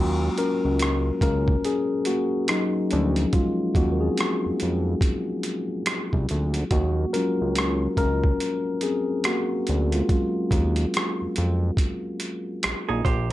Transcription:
0.00 0.30 D#2 loud
0.00 0.55 F#3 soft
0.00 0.55 G#3 soft
0.00 0.16 A#3 medium
0.00 0.38 C#4 soft
0.00 0.56 F4 soft
0.00 0.16 F#4 medium
0.38 1.19 C#4 medium
0.38 1.21 A#4 medium
0.38 closed hi-hat medium
0.65 1.11 C#2 medium
0.79 cross-stick medium
0.79 closed hi-hat medium
1.21 1.56 C#2 medium
1.21 1.62 C#4 medium
1.21 1.61 A#4 medium
1.21 kick medium
1.21 closed hi-hat medium
1.48 kick medium
1.65 1.85 C#4 medium
1.65 1.84 G#4 medium
1.65 closed hi-hat medium
2.05 2.47 A#3 medium
2.05 2.50 F#4 medium
2.05 closed hi-hat medium
2.48 2.69 F#3 medium
2.48 2.68 D#4 medium
2.48 cross-stick medium
2.48 closed hi-hat medium
2.91 3.26 D2 loud
2.91 3.31 F3 soft
2.91 3.30 C#4 medium
2.91 closed hi-hat soft
3.16 closed hi-hat soft
3.33 3.74 G#3 medium
3.33 3.77 F4 medium
3.33 kick loud
3.33 closed hi-hat medium
3.75 4.10 D#2 medium
3.75 4.99 G#3 soft
3.75 3.85 A#3 medium
3.75 4.99 C#4 soft
3.75 4.99 F4 medium
3.75 4.99 F#4 medium
3.75 kick medium
3.75 closed hi-hat medium
3.92 4.01 A#4 medium
4.00 5.67 C4 medium
4.00 5.66 G#4 medium
4.17 cross-stick medium
4.17 closed hi-hat medium
4.46 4.52 F2 soft
4.60 4.95 F2 medium
4.60 closed hi-hat medium
5.01 kick medium
5.01 closed hi-hat medium
5.43 closed hi-hat medium
5.86 cross-stick medium
5.86 closed hi-hat medium
6.13 6.27 C2 medium
6.13 kick medium
6.29 6.64 D2 medium
6.29 closed hi-hat medium
6.54 closed hi-hat soft
6.71 7.06 D#2 loud
6.71 6.92 A#3 medium
6.71 6.90 F#4 medium
6.71 kick medium
6.71 closed hi-hat medium
7.13 10.09 F#3 medium
7.13 9.93 G#3 soft
7.13 7.95 C#4 medium
7.13 9.92 F4 soft
7.13 7.96 A#4 medium
7.13 closed hi-hat medium
7.41 7.88 C#2 medium
7.55 cross-stick medium
7.55 closed hi-hat medium
7.97 8.32 C#2 medium
7.97 8.79 C#4 medium
7.97 8.85 A#4 medium
7.97 kick medium
7.97 closed hi-hat medium
8.24 kick medium
8.40 closed hi-hat medium
8.81 9.23 C4 medium
8.81 9.26 G#4 medium
8.81 closed hi-hat medium
9.24 9.90 A#3 medium
9.24 9.95 F#4 medium
9.24 cross-stick loud
9.24 closed hi-hat medium
9.67 10.02 D2 medium
9.67 closed hi-hat medium
9.92 10.10 G#3 medium
9.92 10.10 F4 medium
9.92 closed hi-hat soft
10.09 11.33 F#3 soft
10.09 11.33 G#3 soft
10.09 11.33 C#4 soft
10.09 11.33 F4 medium
10.09 kick medium
10.09 closed hi-hat medium
10.51 10.86 D#2 medium
10.51 kick medium
10.51 closed hi-hat medium
10.76 closed hi-hat soft
10.94 cross-stick medium
10.94 closed hi-hat medium
11.22 11.28 F2 soft
11.36 11.71 F2 medium
11.36 closed hi-hat medium
11.77 kick medium
11.77 closed hi-hat medium
12.20 closed hi-hat medium
12.63 12.74 A#1 soft
12.63 cross-stick loud
12.63 closed hi-hat medium
12.89 13.03 A#1 medium
12.89 13.04 D#4 medium
12.89 13.04 G#4 medium
13.05 13.32 A#1 loud
13.05 13.30 G4 medium
13.05 13.29 C5 medium
13.05 kick medium
13.05 closed hi-hat soft

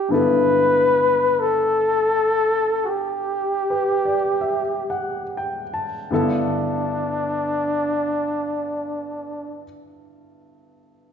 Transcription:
0.00 0.11 E4 soft
0.00 0.13 G4 medium
0.00 0.12 A4 soft
0.09 6.09 G2 soft
0.09 6.10 D3 soft
0.09 6.10 B3 soft
0.09 6.11 E4 soft
0.09 1.42 B4 loud
0.14 6.12 A4 soft
1.40 2.86 A4 medium
2.84 2.89 F#4 soft
2.84 5.57 G4 medium
3.70 4.14 B4 soft
4.05 4.60 D5 soft
4.41 5.22 E5 soft
4.90 5.62 F#5 soft
5.37 5.84 G5 soft
5.74 6.33 A5 soft
6.11 9.62 G2 medium
6.11 9.64 D3 medium
6.11 9.63 B3 soft
6.11 9.64 E4 soft
6.11 9.66 A4 medium
6.16 9.64 D4 medium

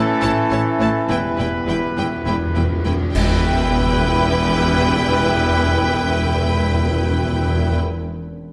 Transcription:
0.00 2.83 E3 loud
0.00 1.10 A3 loud
0.00 1.06 C#4 loud
0.00 2.82 E4 loud
0.00 1.05 A4 medium
0.21 0.31 A1 loud
0.21 0.30 A2 medium
0.21 0.29 E4 medium
0.21 0.30 C#5 medium
0.21 0.30 A5 medium
0.51 0.59 A1 medium
0.51 0.59 A2 medium
0.51 0.59 E4 medium
0.51 0.59 C#5 medium
0.51 0.60 A5 medium
0.79 0.88 A1 medium
0.79 0.87 A2 medium
0.79 0.88 E4 medium
0.79 0.88 C#5 medium
0.79 0.89 A5 medium
1.08 1.17 E1 medium
1.08 1.15 E2 soft
1.08 1.18 E2 medium
1.08 2.87 G3 medium
1.08 2.82 B3 medium
1.08 1.17 E4 medium
1.08 1.17 B4 medium
1.08 2.83 B4 medium
1.08 1.18 G5 medium
1.17 1.23 E2 soft
1.24 1.30 E2 soft
1.31 1.37 E2 medium
1.38 1.48 E1 medium
1.38 1.45 E2 medium
1.38 1.47 E2 medium
1.38 1.46 E4 medium
1.38 1.46 B4 medium
1.38 1.47 G5 medium
1.47 1.53 E2 medium
1.54 1.61 E2 medium
1.62 1.68 E2 medium
1.67 1.77 E1 medium
1.67 1.77 E2 medium
1.67 1.75 E4 medium
1.67 1.76 B4 medium
1.67 1.77 G5 medium
1.78 1.84 E2 medium
1.85 1.92 E2 medium
1.93 1.99 E2 medium
1.93 2.05 B4 medium
1.97 2.05 E1 medium
1.97 2.06 E2 medium
1.97 2.07 E2 medium
1.97 2.06 E4 medium
1.97 2.06 G5 medium
2.09 2.15 E2 medium
2.16 2.22 E2 medium
2.23 2.34 E1 medium
2.23 2.29 E2 medium
2.23 2.35 E2 medium
2.23 2.34 E4 medium
2.23 2.35 B4 medium
2.23 2.35 G5 medium
2.30 2.36 E2 medium
2.38 2.45 E2 medium
2.46 2.52 E2 loud
2.54 2.64 E1 medium
2.54 2.60 E2 loud
2.54 2.64 E2 medium
2.54 2.63 E4 medium
2.54 2.64 B4 medium
2.54 2.63 G5 medium
2.62 2.68 E2 medium
2.70 2.76 E2 loud
2.77 2.84 E2 loud
2.85 2.93 E1 medium
2.85 2.92 E2 loud
2.85 2.94 E2 medium
2.85 2.93 E4 medium
2.85 2.93 B4 medium
2.85 2.93 G5 medium
2.93 2.99 E2 loud
3.01 3.08 E2 loud
3.14 7.78 E1 loud
3.14 3.22 E2 medium
3.14 7.78 E2 medium
3.14 7.77 E3 loud
3.14 7.78 G3 loud
3.14 7.79 B3 medium
3.14 7.78 E4 medium
3.14 7.78 B4 medium
3.14 7.77 G5 loud
3.14 concert bass drum medium
3.14 crash medium
3.22 3.30 E2 medium
3.30 3.37 E2 medium
3.37 3.44 E2 loud
3.44 3.52 E2 medium
3.52 3.59 E2 medium
3.60 3.67 E2 loud
3.67 3.75 E2 medium
3.75 3.82 E2 loud
3.82 3.89 E2 medium
3.89 3.96 E2 loud
3.96 4.04 E2 medium
4.04 4.12 E2 loud
4.12 4.20 E2 medium
4.20 4.27 E2 loud
4.27 4.34 E2 loud
4.34 4.42 E2 loud
4.42 4.49 E2 medium
4.49 4.56 E2 medium
4.56 4.64 E2 medium
4.64 4.70 E2 loud
4.70 4.78 E2 medium
4.78 4.85 E2 medium
4.85 4.93 E2 medium
4.93 5.00 E2 loud
5.00 5.07 E2 medium
5.07 5.15 E2 loud
5.15 5.22 E2 medium
5.22 5.30 E2 loud
5.30 5.36 E2 medium
5.36 5.44 E2 loud
5.44 5.51 E2 medium
5.51 5.58 E2 loud
5.58 5.65 E2 medium
5.65 5.72 E2 loud
5.72 5.79 E2 medium
5.79 5.86 E2 loud
5.87 5.94 E2 medium
5.94 6.02 E2 loud
6.02 6.09 E2 medium
6.09 6.16 E2 loud
6.16 6.24 E2 medium
6.24 6.31 E2 loud
6.31 6.38 E2 medium
6.38 6.45 E2 loud
6.45 6.52 E2 loud
6.52 6.59 E2 loud
6.60 6.67 E2 loud
6.67 6.74 E2 loud
6.74 6.81 E2 loud
6.81 6.89 E2 medium
6.89 6.96 E2 loud
6.96 7.02 E2 loud
7.02 7.10 E2 medium
7.10 7.17 E2 loud
7.17 7.25 E2 medium
7.25 7.32 E2 loud
7.33 7.40 E2 loud
7.40 7.47 E2 loud
7.47 7.54 E2 medium
7.54 7.62 E2 loud
7.62 7.68 E2 medium
7.68 7.76 E2 loud
7.76 7.83 E2 medium

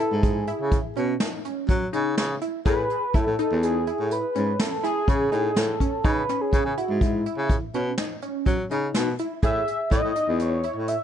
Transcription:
0.00 0.37 E4 medium
0.00 0.25 A4 medium
0.12 0.49 G#2 medium
0.23 0.72 G#4 medium
0.23 kick medium
0.23 closed hi-hat medium
0.47 0.85 E4 medium
0.47 closed hi-hat medium
0.60 0.79 C#3 medium
0.72 kick loud
0.72 closed hi-hat medium
0.96 1.15 B2 medium
0.96 1.15 C#4 medium
0.96 closed hi-hat medium
1.20 1.39 D#4 medium
1.20 snare loud
1.20 closed hi-hat medium
1.45 1.83 C#4 medium
1.45 closed hi-hat soft
1.69 1.88 F#3 medium
1.69 kick medium
1.69 closed hi-hat medium
1.93 2.12 C#3 medium
1.93 2.31 D#4 medium
1.93 closed hi-hat medium
2.17 2.36 C#3 medium
2.17 snare medium
2.17 closed hi-hat medium
2.41 2.60 E4 medium
2.41 closed hi-hat medium
2.65 2.84 A2 medium
2.65 3.04 G#4 medium
2.65 3.16 B4 loud
2.65 kick medium
2.65 closed hi-hat medium
2.90 closed hi-hat soft
3.14 3.24 A2 medium
3.14 3.33 E4 medium
3.14 3.63 A4 loud
3.14 kick medium
3.14 closed hi-hat medium
3.27 3.36 A2 medium
3.39 3.76 D#4 medium
3.39 closed hi-hat medium
3.51 3.88 E2 medium
3.63 4.14 G#4 medium
3.63 closed hi-hat medium
3.87 4.25 E4 medium
3.87 closed hi-hat medium
3.99 4.18 A2 medium
4.11 4.62 B4 medium
4.11 closed hi-hat medium
4.35 4.54 G#2 medium
4.35 4.73 C#4 medium
4.35 closed hi-hat soft
4.59 4.84 A4 medium
4.59 snare loud
4.59 closed hi-hat medium
4.83 5.02 E4 medium
4.83 5.59 G#4 loud
4.83 snare soft
4.83 closed hi-hat medium
5.08 5.27 C#3 medium
5.08 5.27 C#4 medium
5.08 kick medium
5.08 closed hi-hat medium
5.32 5.50 A2 medium
5.32 5.69 D#4 medium
5.32 closed hi-hat medium
5.56 5.75 A2 medium
5.56 6.07 A4 medium
5.56 snare medium
5.56 closed hi-hat medium
5.80 5.99 C#4 medium
5.80 kick medium
5.80 closed hi-hat medium
6.04 6.23 C#3 medium
6.04 6.23 D#4 medium
6.04 6.43 B4 loud
6.04 kick medium
6.04 closed hi-hat medium
6.29 6.67 C#4 medium
6.29 snare soft
6.29 closed hi-hat medium
6.41 6.79 G#4 medium
6.53 6.62 C#3 medium
6.53 kick medium
6.53 closed hi-hat medium
6.65 6.75 C#3 medium
6.77 7.15 E4 medium
6.77 7.03 F#4 medium
6.77 closed hi-hat medium
6.89 7.27 G#2 medium
7.01 7.50 E4 medium
7.01 kick loud
7.01 closed hi-hat medium
7.26 7.63 E4 medium
7.26 closed hi-hat medium
7.38 7.56 C#3 medium
7.50 kick medium
7.50 closed hi-hat medium
7.74 7.93 B2 medium
7.74 7.93 C#4 medium
7.74 closed hi-hat soft
7.98 8.17 D#4 medium
7.98 snare loud
7.98 closed hi-hat medium
8.22 8.60 C#4 medium
8.22 closed hi-hat soft
8.46 8.65 F#3 medium
8.46 kick medium
8.46 closed hi-hat medium
8.70 8.89 C#3 medium
8.70 9.08 D#4 medium
8.70 closed hi-hat medium
8.94 9.13 B2 medium
8.94 snare medium
8.94 closed hi-hat medium
9.19 9.38 E4 medium
9.19 closed hi-hat medium
9.42 9.62 A2 medium
9.42 9.81 G#4 medium
9.42 9.89 E5 loud
9.42 kick loud
9.42 closed hi-hat medium
9.67 closed hi-hat medium
9.91 10.01 A2 medium
9.91 10.10 E4 medium
9.91 10.42 D#5 loud
9.91 kick medium
9.91 snare soft
9.91 closed hi-hat medium
10.04 10.13 A2 medium
10.15 10.53 D#4 medium
10.15 closed hi-hat medium
10.28 10.65 E2 medium
10.39 10.90 C#5 medium
10.39 closed hi-hat medium
10.63 11.02 E4 medium
10.63 closed hi-hat medium
10.76 10.95 A2 medium
10.88 11.04 E5 medium
10.88 closed hi-hat medium

